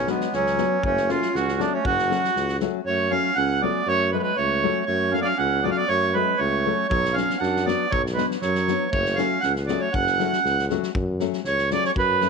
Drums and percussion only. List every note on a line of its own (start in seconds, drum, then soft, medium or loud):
0.07 snare soft
0.21 snare soft
0.33 snare soft
0.46 snare soft
0.58 snare soft
0.83 kick medium
0.97 snare soft
1.09 snare soft
1.22 snare soft
1.35 snare soft
1.48 snare soft
1.60 snare soft
1.85 kick loud
1.99 snare soft
2.11 snare soft
2.24 snare soft
2.36 snare soft
2.48 snare soft
2.60 snare soft
6.91 kick loud
7.05 snare soft
7.17 snare soft
7.30 snare soft
7.43 snare soft
7.56 snare soft
7.68 snare soft
7.93 kick medium
8.06 snare soft
8.18 snare soft
8.31 snare soft
8.42 snare soft
8.55 snare soft
8.68 snare soft
8.93 kick medium
9.06 snare soft
9.18 snare soft
9.43 snare soft
9.56 snare soft
9.68 snare soft
9.94 kick medium
10.07 snare soft
10.19 snare soft
10.33 snare soft
10.45 snare soft
10.59 snare soft
10.70 snare soft
10.83 snare soft
10.95 kick loud
11.20 snare soft
11.33 snare soft
11.45 snare soft
11.58 snare soft
11.71 snare soft
11.84 snare soft
11.96 kick medium
12.21 snare soft